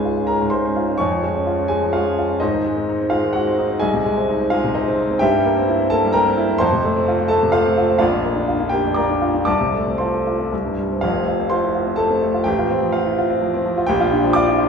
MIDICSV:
0, 0, Header, 1, 2, 480
1, 0, Start_track
1, 0, Tempo, 473186
1, 1007, Time_signature, 3, 2, 24, 8
1, 2930, Tempo, 465839
1, 8690, Tempo, 483092
1, 9170, Tempo, 516796
1, 11090, Tempo, 473560
1, 14797, End_track
2, 0, Start_track
2, 0, Title_t, "Grand piano"
2, 0, Program_c, 0, 0
2, 0, Control_c, 0, 64, 127
2, 0, Note_on_c, 0, 37, 64
2, 0, Note_on_c, 0, 44, 48
2, 0, Note_on_c, 0, 56, 51
2, 0, Note_on_c, 0, 61, 50
2, 0, Note_on_c, 0, 68, 54
2, 0, Note_on_c, 0, 77, 58
2, 0, Note_on_c, 0, 80, 76
2, 53, Note_on_c, 0, 65, 49
2, 125, Note_off_c, 0, 61, 0
2, 175, Note_on_c, 0, 61, 49
2, 245, Note_off_c, 0, 65, 0
2, 246, Note_off_c, 0, 68, 0
2, 247, Note_off_c, 0, 77, 0
2, 272, Note_on_c, 0, 82, 74
2, 281, Note_off_c, 0, 80, 0
2, 281, Note_on_c, 0, 70, 55
2, 294, Note_off_c, 0, 56, 0
2, 294, Note_on_c, 0, 56, 50
2, 365, Note_off_c, 0, 61, 0
2, 417, Note_off_c, 0, 44, 0
2, 417, Note_on_c, 0, 44, 48
2, 484, Note_off_c, 0, 56, 0
2, 507, Note_on_c, 0, 84, 77
2, 508, Note_off_c, 0, 70, 0
2, 520, Note_off_c, 0, 82, 0
2, 520, Note_on_c, 0, 72, 58
2, 531, Note_on_c, 0, 56, 47
2, 605, Note_off_c, 0, 44, 0
2, 659, Note_on_c, 0, 61, 57
2, 721, Note_off_c, 0, 56, 0
2, 775, Note_on_c, 0, 65, 53
2, 845, Note_off_c, 0, 61, 0
2, 895, Note_on_c, 0, 61, 49
2, 963, Note_off_c, 0, 65, 0
2, 969, Note_off_c, 0, 37, 0
2, 969, Note_off_c, 0, 72, 0
2, 989, Note_on_c, 0, 85, 85
2, 996, Note_off_c, 0, 84, 0
2, 1002, Note_on_c, 0, 73, 61
2, 1002, Note_on_c, 0, 80, 62
2, 1011, Note_off_c, 0, 61, 0
2, 1012, Note_on_c, 0, 41, 70
2, 1025, Control_c, 0, 64, 0
2, 1132, Note_on_c, 0, 53, 54
2, 1220, Control_c, 0, 64, 127
2, 1247, Note_on_c, 0, 56, 52
2, 1322, Note_off_c, 0, 53, 0
2, 1371, Note_on_c, 0, 61, 56
2, 1441, Note_off_c, 0, 56, 0
2, 1490, Note_on_c, 0, 65, 54
2, 1564, Note_off_c, 0, 61, 0
2, 1611, Note_on_c, 0, 61, 48
2, 1685, Note_off_c, 0, 65, 0
2, 1690, Note_off_c, 0, 80, 0
2, 1691, Note_off_c, 0, 73, 0
2, 1706, Note_on_c, 0, 80, 74
2, 1719, Note_on_c, 0, 68, 58
2, 1725, Note_off_c, 0, 85, 0
2, 1732, Note_on_c, 0, 56, 51
2, 1807, Note_off_c, 0, 61, 0
2, 1859, Note_on_c, 0, 53, 50
2, 1929, Note_off_c, 0, 56, 0
2, 1953, Note_off_c, 0, 68, 0
2, 1956, Note_on_c, 0, 77, 73
2, 1964, Note_off_c, 0, 80, 0
2, 1966, Note_on_c, 0, 65, 53
2, 1966, Note_on_c, 0, 73, 51
2, 1978, Note_on_c, 0, 56, 52
2, 2052, Note_off_c, 0, 53, 0
2, 2100, Note_on_c, 0, 61, 50
2, 2170, Note_off_c, 0, 56, 0
2, 2203, Note_off_c, 0, 65, 0
2, 2218, Note_on_c, 0, 65, 60
2, 2290, Note_off_c, 0, 61, 0
2, 2333, Note_on_c, 0, 61, 47
2, 2408, Note_off_c, 0, 65, 0
2, 2415, Note_off_c, 0, 73, 0
2, 2417, Note_off_c, 0, 41, 0
2, 2433, Note_on_c, 0, 75, 80
2, 2442, Note_on_c, 0, 63, 55
2, 2444, Note_off_c, 0, 77, 0
2, 2445, Note_on_c, 0, 72, 54
2, 2453, Note_off_c, 0, 61, 0
2, 2454, Note_on_c, 0, 44, 73
2, 2471, Control_c, 0, 64, 0
2, 2577, Note_on_c, 0, 51, 56
2, 2616, Control_c, 0, 64, 127
2, 2695, Note_on_c, 0, 56, 55
2, 2766, Note_off_c, 0, 51, 0
2, 2810, Note_on_c, 0, 60, 60
2, 2884, Note_off_c, 0, 56, 0
2, 2918, Note_off_c, 0, 63, 0
2, 2933, Note_on_c, 0, 63, 53
2, 3002, Note_off_c, 0, 60, 0
2, 3051, Note_on_c, 0, 60, 54
2, 3125, Note_off_c, 0, 63, 0
2, 3126, Note_off_c, 0, 72, 0
2, 3146, Note_on_c, 0, 77, 80
2, 3157, Note_on_c, 0, 65, 61
2, 3161, Note_off_c, 0, 75, 0
2, 3166, Note_on_c, 0, 56, 61
2, 3244, Note_off_c, 0, 60, 0
2, 3290, Note_on_c, 0, 51, 55
2, 3362, Note_off_c, 0, 56, 0
2, 3382, Note_on_c, 0, 78, 78
2, 3388, Note_off_c, 0, 65, 0
2, 3397, Note_on_c, 0, 66, 59
2, 3400, Note_off_c, 0, 77, 0
2, 3409, Note_on_c, 0, 56, 53
2, 3484, Note_off_c, 0, 51, 0
2, 3535, Note_on_c, 0, 60, 61
2, 3602, Note_off_c, 0, 56, 0
2, 3651, Note_on_c, 0, 63, 62
2, 3724, Note_off_c, 0, 60, 0
2, 3771, Note_on_c, 0, 60, 55
2, 3841, Note_off_c, 0, 63, 0
2, 3846, Note_off_c, 0, 66, 0
2, 3847, Note_off_c, 0, 44, 0
2, 3864, Note_on_c, 0, 80, 89
2, 3873, Note_off_c, 0, 78, 0
2, 3877, Note_on_c, 0, 68, 67
2, 3877, Note_on_c, 0, 75, 65
2, 3889, Note_off_c, 0, 60, 0
2, 3890, Note_on_c, 0, 36, 72
2, 3909, Control_c, 0, 64, 0
2, 4010, Note_on_c, 0, 48, 60
2, 4046, Control_c, 0, 64, 127
2, 4133, Note_on_c, 0, 56, 62
2, 4202, Note_off_c, 0, 48, 0
2, 4253, Note_on_c, 0, 60, 61
2, 4325, Note_off_c, 0, 56, 0
2, 4377, Note_on_c, 0, 63, 56
2, 4447, Note_off_c, 0, 60, 0
2, 4500, Note_on_c, 0, 60, 51
2, 4568, Note_off_c, 0, 68, 0
2, 4568, Note_off_c, 0, 75, 0
2, 4569, Note_off_c, 0, 63, 0
2, 4593, Note_on_c, 0, 77, 80
2, 4603, Note_off_c, 0, 80, 0
2, 4604, Note_on_c, 0, 65, 58
2, 4618, Note_on_c, 0, 56, 66
2, 4691, Note_off_c, 0, 60, 0
2, 4737, Note_on_c, 0, 48, 62
2, 4809, Note_off_c, 0, 56, 0
2, 4833, Note_off_c, 0, 65, 0
2, 4841, Note_on_c, 0, 75, 70
2, 4844, Note_off_c, 0, 77, 0
2, 4850, Note_on_c, 0, 63, 58
2, 4850, Note_on_c, 0, 72, 57
2, 4863, Note_on_c, 0, 56, 57
2, 4928, Note_off_c, 0, 48, 0
2, 4985, Note_on_c, 0, 60, 68
2, 5049, Note_off_c, 0, 56, 0
2, 5090, Note_off_c, 0, 63, 0
2, 5105, Note_on_c, 0, 63, 65
2, 5169, Note_off_c, 0, 60, 0
2, 5216, Note_on_c, 0, 60, 62
2, 5288, Note_off_c, 0, 63, 0
2, 5289, Note_off_c, 0, 36, 0
2, 5293, Note_off_c, 0, 72, 0
2, 5304, Note_on_c, 0, 79, 97
2, 5317, Note_on_c, 0, 67, 76
2, 5317, Note_on_c, 0, 76, 72
2, 5322, Note_off_c, 0, 75, 0
2, 5330, Note_on_c, 0, 43, 82
2, 5332, Note_off_c, 0, 60, 0
2, 5349, Control_c, 0, 64, 0
2, 5452, Note_on_c, 0, 55, 60
2, 5485, Control_c, 0, 64, 127
2, 5573, Note_on_c, 0, 58, 67
2, 5644, Note_off_c, 0, 55, 0
2, 5694, Note_on_c, 0, 60, 68
2, 5765, Note_off_c, 0, 58, 0
2, 5816, Note_on_c, 0, 64, 67
2, 5886, Note_off_c, 0, 60, 0
2, 5934, Note_on_c, 0, 60, 67
2, 6005, Note_off_c, 0, 67, 0
2, 6005, Note_off_c, 0, 76, 0
2, 6006, Note_off_c, 0, 64, 0
2, 6034, Note_on_c, 0, 81, 101
2, 6040, Note_off_c, 0, 79, 0
2, 6047, Note_on_c, 0, 69, 71
2, 6056, Note_on_c, 0, 58, 65
2, 6125, Note_off_c, 0, 60, 0
2, 6176, Note_on_c, 0, 55, 66
2, 6246, Note_off_c, 0, 58, 0
2, 6265, Note_on_c, 0, 82, 95
2, 6271, Note_off_c, 0, 69, 0
2, 6275, Note_on_c, 0, 70, 71
2, 6276, Note_on_c, 0, 79, 73
2, 6282, Note_off_c, 0, 81, 0
2, 6289, Note_on_c, 0, 58, 60
2, 6365, Note_off_c, 0, 55, 0
2, 6407, Note_on_c, 0, 60, 72
2, 6480, Note_off_c, 0, 58, 0
2, 6523, Note_on_c, 0, 64, 74
2, 6598, Note_off_c, 0, 60, 0
2, 6647, Note_on_c, 0, 60, 59
2, 6717, Note_off_c, 0, 64, 0
2, 6725, Note_off_c, 0, 70, 0
2, 6726, Note_off_c, 0, 43, 0
2, 6726, Note_off_c, 0, 79, 0
2, 6738, Note_on_c, 0, 84, 102
2, 6753, Note_on_c, 0, 81, 74
2, 6754, Note_off_c, 0, 82, 0
2, 6754, Note_on_c, 0, 72, 81
2, 6765, Note_on_c, 0, 41, 83
2, 6767, Note_off_c, 0, 60, 0
2, 6787, Control_c, 0, 64, 0
2, 6884, Note_on_c, 0, 48, 60
2, 6939, Control_c, 0, 64, 127
2, 7003, Note_on_c, 0, 57, 72
2, 7077, Note_off_c, 0, 48, 0
2, 7125, Note_on_c, 0, 60, 68
2, 7195, Note_off_c, 0, 57, 0
2, 7251, Note_on_c, 0, 65, 68
2, 7316, Note_off_c, 0, 60, 0
2, 7367, Note_on_c, 0, 60, 59
2, 7434, Note_off_c, 0, 72, 0
2, 7434, Note_off_c, 0, 81, 0
2, 7438, Note_off_c, 0, 65, 0
2, 7458, Note_on_c, 0, 81, 93
2, 7468, Note_off_c, 0, 84, 0
2, 7469, Note_on_c, 0, 69, 69
2, 7482, Note_on_c, 0, 57, 66
2, 7556, Note_off_c, 0, 60, 0
2, 7609, Note_on_c, 0, 48, 62
2, 7674, Note_off_c, 0, 57, 0
2, 7698, Note_off_c, 0, 69, 0
2, 7702, Note_on_c, 0, 77, 89
2, 7710, Note_off_c, 0, 81, 0
2, 7712, Note_on_c, 0, 72, 62
2, 7713, Note_on_c, 0, 65, 70
2, 7725, Note_on_c, 0, 57, 61
2, 7797, Note_off_c, 0, 48, 0
2, 7846, Note_on_c, 0, 60, 66
2, 7916, Note_off_c, 0, 57, 0
2, 7953, Note_off_c, 0, 65, 0
2, 7968, Note_on_c, 0, 65, 70
2, 8037, Note_off_c, 0, 60, 0
2, 8090, Note_on_c, 0, 60, 62
2, 8158, Note_off_c, 0, 65, 0
2, 8161, Note_off_c, 0, 41, 0
2, 8164, Note_off_c, 0, 72, 0
2, 8167, Note_off_c, 0, 77, 0
2, 8183, Note_on_c, 0, 77, 89
2, 8194, Note_on_c, 0, 65, 70
2, 8194, Note_on_c, 0, 74, 65
2, 8205, Note_on_c, 0, 34, 83
2, 8207, Note_off_c, 0, 60, 0
2, 8221, Control_c, 0, 64, 0
2, 8327, Note_on_c, 0, 41, 59
2, 8368, Control_c, 0, 64, 127
2, 8448, Note_on_c, 0, 58, 59
2, 8520, Note_off_c, 0, 41, 0
2, 8570, Note_on_c, 0, 62, 57
2, 8642, Note_off_c, 0, 58, 0
2, 8681, Note_off_c, 0, 65, 0
2, 8696, Note_on_c, 0, 65, 64
2, 8761, Note_off_c, 0, 62, 0
2, 8812, Note_on_c, 0, 62, 56
2, 8882, Note_off_c, 0, 74, 0
2, 8883, Note_off_c, 0, 65, 0
2, 8904, Note_on_c, 0, 79, 86
2, 8916, Note_on_c, 0, 67, 65
2, 8917, Note_off_c, 0, 77, 0
2, 8929, Note_on_c, 0, 58, 57
2, 9001, Note_off_c, 0, 62, 0
2, 9055, Note_on_c, 0, 41, 53
2, 9122, Note_off_c, 0, 58, 0
2, 9147, Note_off_c, 0, 67, 0
2, 9153, Note_on_c, 0, 86, 76
2, 9158, Note_off_c, 0, 79, 0
2, 9165, Note_on_c, 0, 82, 62
2, 9167, Note_on_c, 0, 74, 69
2, 9178, Note_on_c, 0, 58, 54
2, 9243, Note_off_c, 0, 41, 0
2, 9293, Note_on_c, 0, 62, 51
2, 9361, Note_off_c, 0, 58, 0
2, 9408, Note_on_c, 0, 65, 55
2, 9480, Note_off_c, 0, 62, 0
2, 9525, Note_on_c, 0, 62, 51
2, 9600, Note_off_c, 0, 65, 0
2, 9610, Note_off_c, 0, 34, 0
2, 9611, Note_off_c, 0, 82, 0
2, 9611, Note_off_c, 0, 86, 0
2, 9612, Note_off_c, 0, 74, 0
2, 9625, Note_on_c, 0, 86, 92
2, 9632, Note_on_c, 0, 74, 70
2, 9634, Note_on_c, 0, 81, 71
2, 9644, Note_on_c, 0, 36, 70
2, 9647, Note_off_c, 0, 62, 0
2, 9663, Control_c, 0, 64, 0
2, 9771, Note_on_c, 0, 48, 53
2, 9864, Control_c, 0, 64, 127
2, 9897, Note_on_c, 0, 57, 50
2, 9968, Note_off_c, 0, 48, 0
2, 10021, Note_on_c, 0, 60, 53
2, 10092, Note_off_c, 0, 57, 0
2, 10097, Note_off_c, 0, 74, 0
2, 10098, Note_off_c, 0, 81, 0
2, 10117, Note_on_c, 0, 84, 59
2, 10128, Note_off_c, 0, 86, 0
2, 10129, Note_on_c, 0, 81, 44
2, 10130, Note_on_c, 0, 72, 43
2, 10139, Note_on_c, 0, 65, 51
2, 10214, Note_off_c, 0, 60, 0
2, 10264, Note_on_c, 0, 69, 50
2, 10332, Note_off_c, 0, 65, 0
2, 10385, Note_on_c, 0, 65, 53
2, 10453, Note_off_c, 0, 69, 0
2, 10500, Note_on_c, 0, 60, 52
2, 10571, Note_off_c, 0, 65, 0
2, 10585, Note_off_c, 0, 36, 0
2, 10617, Note_off_c, 0, 60, 0
2, 10620, Note_on_c, 0, 36, 59
2, 10635, Control_c, 0, 64, 0
2, 10739, Note_on_c, 0, 43, 45
2, 10801, Control_c, 0, 64, 127
2, 10812, Note_off_c, 0, 72, 0
2, 10812, Note_off_c, 0, 81, 0
2, 10843, Note_off_c, 0, 84, 0
2, 10862, Note_on_c, 0, 55, 46
2, 10929, Note_off_c, 0, 43, 0
2, 10983, Note_on_c, 0, 60, 46
2, 11048, Note_off_c, 0, 55, 0
2, 11075, Note_on_c, 0, 77, 78
2, 11078, Note_off_c, 0, 36, 0
2, 11086, Note_on_c, 0, 29, 69
2, 11087, Note_on_c, 0, 65, 60
2, 11095, Note_off_c, 0, 60, 0
2, 11097, Note_on_c, 0, 41, 68
2, 11108, Control_c, 0, 64, 0
2, 11219, Note_on_c, 0, 60, 56
2, 11275, Control_c, 0, 64, 127
2, 11331, Note_off_c, 0, 65, 0
2, 11346, Note_on_c, 0, 65, 55
2, 11413, Note_off_c, 0, 60, 0
2, 11465, Note_on_c, 0, 60, 55
2, 11536, Note_off_c, 0, 65, 0
2, 11564, Note_on_c, 0, 84, 87
2, 11572, Note_off_c, 0, 77, 0
2, 11577, Note_on_c, 0, 72, 62
2, 11588, Note_on_c, 0, 65, 58
2, 11655, Note_off_c, 0, 60, 0
2, 11704, Note_on_c, 0, 64, 42
2, 11776, Note_off_c, 0, 65, 0
2, 11821, Note_on_c, 0, 65, 58
2, 11822, Note_off_c, 0, 64, 0
2, 11940, Note_on_c, 0, 60, 57
2, 12012, Note_off_c, 0, 65, 0
2, 12024, Note_off_c, 0, 72, 0
2, 12033, Note_on_c, 0, 81, 81
2, 12046, Note_on_c, 0, 69, 65
2, 12052, Note_off_c, 0, 84, 0
2, 12056, Note_on_c, 0, 57, 59
2, 12132, Note_off_c, 0, 60, 0
2, 12177, Note_on_c, 0, 60, 56
2, 12252, Note_off_c, 0, 57, 0
2, 12299, Note_on_c, 0, 57, 57
2, 12374, Note_off_c, 0, 60, 0
2, 12422, Note_on_c, 0, 65, 55
2, 12496, Note_off_c, 0, 57, 0
2, 12503, Note_off_c, 0, 29, 0
2, 12505, Note_off_c, 0, 69, 0
2, 12509, Note_off_c, 0, 41, 0
2, 12519, Note_on_c, 0, 79, 84
2, 12533, Note_off_c, 0, 81, 0
2, 12534, Note_on_c, 0, 67, 66
2, 12543, Note_on_c, 0, 33, 79
2, 12546, Note_off_c, 0, 65, 0
2, 12567, Control_c, 0, 64, 0
2, 12670, Note_on_c, 0, 65, 66
2, 12723, Control_c, 0, 64, 127
2, 12789, Note_on_c, 0, 60, 68
2, 12862, Note_off_c, 0, 65, 0
2, 12907, Note_on_c, 0, 53, 60
2, 12982, Note_off_c, 0, 60, 0
2, 12990, Note_off_c, 0, 67, 0
2, 13012, Note_on_c, 0, 77, 75
2, 13016, Note_off_c, 0, 79, 0
2, 13023, Note_on_c, 0, 65, 52
2, 13101, Note_off_c, 0, 53, 0
2, 13153, Note_on_c, 0, 64, 51
2, 13261, Note_off_c, 0, 65, 0
2, 13273, Note_off_c, 0, 64, 0
2, 13276, Note_on_c, 0, 65, 71
2, 13392, Note_on_c, 0, 60, 68
2, 13467, Note_off_c, 0, 65, 0
2, 13516, Note_on_c, 0, 53, 67
2, 13585, Note_off_c, 0, 60, 0
2, 13638, Note_on_c, 0, 60, 72
2, 13706, Note_off_c, 0, 53, 0
2, 13743, Note_off_c, 0, 77, 0
2, 13754, Note_on_c, 0, 53, 64
2, 13826, Note_off_c, 0, 60, 0
2, 13876, Note_on_c, 0, 65, 70
2, 13942, Note_off_c, 0, 53, 0
2, 13945, Note_off_c, 0, 33, 0
2, 13965, Note_on_c, 0, 79, 100
2, 13981, Note_on_c, 0, 67, 78
2, 13990, Note_off_c, 0, 65, 0
2, 13990, Note_on_c, 0, 34, 88
2, 14008, Control_c, 0, 64, 0
2, 14107, Note_on_c, 0, 65, 88
2, 14164, Control_c, 0, 64, 127
2, 14230, Note_on_c, 0, 62, 74
2, 14291, Note_off_c, 0, 65, 0
2, 14345, Note_on_c, 0, 53, 74
2, 14411, Note_off_c, 0, 62, 0
2, 14416, Note_off_c, 0, 67, 0
2, 14440, Note_on_c, 0, 86, 113
2, 14441, Note_off_c, 0, 79, 0
2, 14452, Note_on_c, 0, 74, 84
2, 14465, Note_on_c, 0, 65, 78
2, 14527, Note_off_c, 0, 53, 0
2, 14578, Note_on_c, 0, 64, 60
2, 14647, Note_off_c, 0, 65, 0
2, 14692, Note_on_c, 0, 65, 71
2, 14693, Note_off_c, 0, 64, 0
2, 14797, Note_off_c, 0, 34, 0
2, 14797, Note_off_c, 0, 65, 0
2, 14797, Note_off_c, 0, 74, 0
2, 14797, Note_off_c, 0, 86, 0
2, 14797, End_track
0, 0, End_of_file